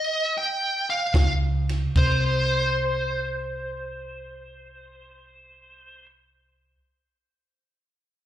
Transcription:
0.00 0.35 D#5 loud
0.38 0.87 G5 medium
0.90 1.32 F5 medium
1.14 1.84 C#2 medium
1.14 kick medium
1.14 snare loud
1.14 ride medium
1.69 snare soft
1.69 ride medium
1.95 6.74 C2 medium
1.95 6.06 C5 medium
1.95 kick loud
1.95 crash medium

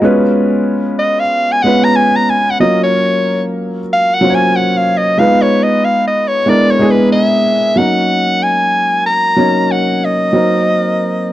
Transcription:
0.00 1.21 G#3 medium
0.00 1.21 B3 medium
0.00 1.22 C#4 medium
0.00 0.22 F#4 medium
0.00 0.21 D#5 medium
0.04 1.22 F4 medium
0.04 1.22 B4 loud
0.99 1.21 D#5 medium
1.20 1.53 F5 medium
1.52 1.64 G#5 loud
1.62 2.53 G#3 medium
1.62 2.53 B3 medium
1.62 2.53 C#4 medium
1.62 2.54 F4 medium
1.62 1.86 F#5 medium
1.67 2.54 B4 medium
1.84 1.97 A#5 loud
1.96 2.17 G#5 loud
2.16 2.31 A#5 medium
2.29 2.52 G#5 loud
2.50 2.60 F#5 loud
2.60 3.79 F#3 medium
2.60 3.79 A#3 medium
2.60 3.80 C#4 medium
2.60 3.80 F4 medium
2.60 3.80 A#4 medium
2.60 2.79 D#5 medium
2.83 3.42 C#5 medium
3.93 4.16 F5 loud
4.14 4.36 F#5 loud
4.21 5.10 F#3 medium
4.21 5.11 A#3 medium
4.21 5.11 C#4 medium
4.21 5.11 F4 medium
4.21 4.31 C5 medium
4.30 5.15 C#5 medium
4.35 4.58 G#5 loud
4.56 4.79 F#5 medium
4.77 4.99 F5 medium
4.97 5.21 D#5 loud
5.18 6.37 G#3 medium
5.18 6.37 B3 medium
5.18 6.38 D#4 medium
5.18 6.38 F4 medium
5.18 6.38 B4 medium
5.18 5.44 F5 loud
5.42 5.65 C#5 medium
5.63 5.86 D#5 medium
5.85 6.05 F5 loud
6.07 6.30 D#5 medium
6.28 6.51 C#5 medium
6.46 6.76 G#3 medium
6.46 6.76 B3 medium
6.46 6.77 D4 medium
6.46 6.77 E4 medium
6.46 6.77 A#4 medium
6.46 6.72 D5 loud
6.71 6.92 C#5 medium
6.79 7.68 G#3 medium
6.79 7.69 B3 medium
6.79 7.69 D4 medium
6.79 7.69 E4 medium
6.79 7.70 G#4 medium
6.91 7.12 B4 medium
7.12 7.79 E5 medium
7.76 8.95 F#3 medium
7.76 8.95 A#3 medium
7.76 8.96 C#4 medium
7.76 8.96 D#4 medium
7.76 8.96 A#4 medium
7.76 8.45 F#5 medium
8.43 9.06 G#5 loud
9.06 9.73 A#5 loud
9.36 10.26 F#3 medium
9.36 10.27 A#3 medium
9.36 10.27 C#4 medium
9.36 10.27 D#4 medium
9.36 10.28 C#5 medium
9.71 10.06 F#5 medium
10.05 11.32 D#5 medium
10.33 11.33 F#3 medium
10.33 11.33 A#3 medium
10.33 11.33 C4 medium
10.33 11.33 D#4 medium
10.33 11.33 A#4 medium

